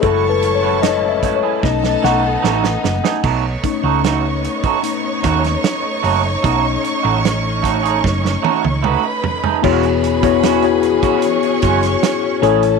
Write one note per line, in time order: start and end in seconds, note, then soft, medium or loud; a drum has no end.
0.01 1.39 F#1 medium
0.01 1.62 F#3 medium
0.01 1.18 G#3 medium
0.01 1.18 A3 medium
0.01 0.23 A3 medium
0.01 1.63 C#4 medium
0.01 1.19 E4 medium
0.01 0.24 E4 medium
0.01 0.30 A4 loud
0.01 1.21 C#5 medium
0.01 1.20 C#6 loud
0.01 kick loud
0.01 closed hi-hat medium
0.05 1.63 E4 medium
0.05 0.24 F#4 medium
0.05 1.63 A5 medium
0.29 0.55 B4 medium
0.42 muted clean electric guitar stroke soft
0.42 closed hi-hat medium
0.55 0.83 C#5 medium
0.63 0.79 A3 soft
0.63 0.79 E4 medium
0.63 0.79 F#4 medium
0.82 1.11 D#5 loud
0.82 snare loud
0.82 closed hi-hat loud
1.03 muted clean electric guitar stroke soft
1.09 1.37 E5 medium
1.23 1.39 A3 medium
1.23 1.39 E4 medium
1.23 1.40 F#4 medium
1.23 kick medium
1.23 closed hi-hat medium
1.36 1.64 C#5 medium
1.43 1.59 A3 soft
1.43 1.59 E4 soft
1.43 1.59 G#4 medium
1.62 1.95 B1 loud
1.62 2.79 A3 medium
1.62 3.22 A3 medium
1.62 3.22 B3 medium
1.62 2.80 C#4 medium
1.62 3.22 D#4 medium
1.62 2.80 D#4 medium
1.62 2.81 A4 loud
1.62 2.05 D#5 medium
1.62 2.81 A5 loud
1.62 kick medium
1.62 snare medium
1.83 muted clean electric guitar stroke soft
1.83 snare medium
2.02 2.35 B1 loud
2.02 2.23 A3 medium
2.02 2.23 D#4 medium
2.02 2.22 F#4 medium
2.02 3.20 F#5 loud
2.02 snare medium
2.23 muted clean electric guitar stroke soft
2.43 2.75 A1 medium
2.43 2.63 A3 medium
2.43 2.63 D#4 loud
2.43 2.64 F#4 loud
2.43 snare medium
2.64 snare medium
2.83 3.00 F#1 medium
2.83 muted clean electric guitar stroke soft
2.83 snare medium
3.04 3.20 A3 soft
3.04 3.20 D#4 medium
3.04 3.19 G#4 medium
3.04 snare loud
3.23 3.55 B1 medium
3.23 3.43 A3 medium
3.23 9.60 A3 medium
3.23 6.41 B3 medium
3.23 3.44 D#4 medium
3.23 9.60 D#4 medium
3.23 3.44 F#4 medium
3.23 8.80 C#5 medium
3.23 8.80 C#6 medium
3.23 kick loud
3.23 crash medium
3.64 4.80 A3 medium
3.64 4.80 C#4 medium
3.64 4.80 D#4 medium
3.64 muted clean electric guitar stroke soft
3.64 kick medium
3.64 closed hi-hat medium
3.84 4.46 C#2 medium
3.84 4.00 A3 soft
3.84 4.00 D#4 medium
3.84 3.99 F#4 medium
4.04 4.24 A3 medium
4.04 4.24 D#4 medium
4.04 4.25 F#4 medium
4.04 snare loud
4.04 closed hi-hat medium
4.44 muted clean electric guitar stroke soft
4.44 closed hi-hat medium
4.64 4.81 A3 soft
4.64 4.80 D#4 medium
4.64 4.80 F#4 medium
4.64 kick medium
4.64 closed hi-hat soft
4.83 5.19 A3 soft
4.83 5.19 C#4 soft
4.83 5.20 D#4 medium
4.83 closed hi-hat loud
5.04 muted clean electric guitar stroke soft
5.23 5.55 D#2 loud
5.23 5.44 A3 medium
5.23 5.43 D#4 medium
5.23 5.42 F#4 medium
5.23 kick medium
5.23 snare soft
5.23 closed hi-hat medium
5.44 muted clean electric guitar stroke soft
5.44 snare soft
5.44 closed hi-hat medium
5.64 snare loud
5.64 closed hi-hat loud
5.83 muted clean electric guitar stroke soft
6.03 6.35 F#1 medium
6.03 6.23 A3 medium
6.03 6.23 D#4 medium
6.03 6.22 F#4 medium
6.03 open hi-hat soft
6.23 muted clean electric guitar stroke soft
6.43 6.75 B1 loud
6.43 6.63 A3 medium
6.43 6.97 A3 medium
6.43 6.97 C#4 medium
6.43 9.61 C#4 medium
6.43 6.64 D#4 medium
6.43 6.98 D#4 medium
6.43 6.64 F#4 medium
6.43 kick loud
6.43 closed hi-hat medium
6.84 muted clean electric guitar stroke soft
6.84 closed hi-hat medium
7.03 8.00 A1 medium
7.03 7.20 A3 soft
7.03 7.19 D#4 medium
7.03 7.19 F#4 medium
7.23 muted clean electric guitar stroke soft
7.23 snare loud
7.23 closed hi-hat medium
7.43 muted clean electric guitar stroke soft
7.62 7.79 A3 medium
7.62 7.79 D#4 medium
7.62 7.79 F#4 medium
7.62 kick medium
7.62 closed hi-hat medium
7.83 8.00 A3 soft
7.83 7.99 D#4 medium
7.83 7.99 G#4 medium
7.83 closed hi-hat medium
8.04 8.35 F#1 loud
8.04 kick medium
8.04 snare medium
8.24 muted clean electric guitar stroke soft
8.24 snare medium
8.42 8.63 A3 medium
8.42 8.63 D#4 medium
8.42 8.62 F#4 medium
8.42 high tom medium
8.63 8.95 C#2 medium
8.63 muted clean electric guitar stroke soft
8.63 high tom medium
8.82 9.03 A3 medium
8.82 9.03 D#4 medium
8.82 9.04 F#4 medium
8.82 9.62 B4 medium
8.82 9.62 B5 medium
8.82 mid tom loud
9.23 muted clean electric guitar stroke medium
9.23 floor tom loud
9.44 9.60 A3 medium
9.44 9.60 D#4 medium
9.44 9.59 G#4 medium
9.44 floor tom medium
9.62 11.00 E1 medium
9.62 12.41 E3 medium
9.62 9.83 G#3 medium
9.62 10.18 B3 medium
9.62 9.84 C#4 medium
9.62 12.79 C#4 medium
9.62 10.18 E4 medium
9.62 10.18 F#4 medium
9.62 9.84 F#4 medium
9.62 12.42 F#4 medium
9.62 10.19 G#4 medium
9.62 12.42 G#4 medium
9.62 11.21 B4 medium
9.62 10.19 C#5 loud
9.62 11.21 B5 medium
9.62 kick loud
9.62 crash medium
9.83 closed hi-hat soft
10.03 muted clean electric guitar stroke soft
10.03 closed hi-hat medium
10.22 10.40 G#3 soft
10.22 10.60 B3 medium
10.22 10.40 C#4 medium
10.22 10.60 E4 medium
10.22 10.60 F#4 medium
10.22 10.39 F#4 medium
10.22 10.60 G#4 medium
10.22 10.61 C#5 medium
10.22 kick loud
10.22 closed hi-hat medium
10.43 10.63 G#3 medium
10.43 10.64 C#4 medium
10.43 10.64 F#4 medium
10.43 snare loud
10.43 closed hi-hat loud
10.62 12.10 B3 medium
10.62 12.10 E4 medium
10.62 12.10 F#4 medium
10.62 12.10 G#4 medium
10.62 12.11 C#5 medium
10.62 closed hi-hat soft
10.83 muted clean electric guitar stroke soft
10.83 closed hi-hat medium
11.03 11.20 G#3 soft
11.03 11.19 C#4 medium
11.03 11.19 F#4 medium
11.03 kick medium
11.03 closed hi-hat medium
11.22 12.41 C#5 medium
11.22 12.41 C#6 medium
11.22 closed hi-hat medium
11.43 muted clean electric guitar stroke soft
11.43 closed hi-hat soft
11.62 11.94 F#1 medium
11.62 11.83 G#3 medium
11.62 11.83 C#4 medium
11.62 11.82 F#4 medium
11.62 kick medium
11.62 closed hi-hat medium
11.83 muted clean electric guitar stroke soft
11.83 snare soft
11.83 closed hi-hat medium
12.03 snare loud
12.03 closed hi-hat loud
12.23 muted clean electric guitar stroke soft
12.41 12.79 A1 medium
12.41 12.79 A3 medium
12.41 12.79 C#4 medium
12.41 12.63 C#4 medium
12.41 12.79 E4 medium
12.41 12.62 E4 medium
12.41 12.61 G#4 medium
12.41 12.79 A4 medium
12.41 12.79 C#5 loud
12.41 12.79 A5 medium
12.41 closed hi-hat medium
12.63 muted clean electric guitar stroke soft
12.63 closed hi-hat medium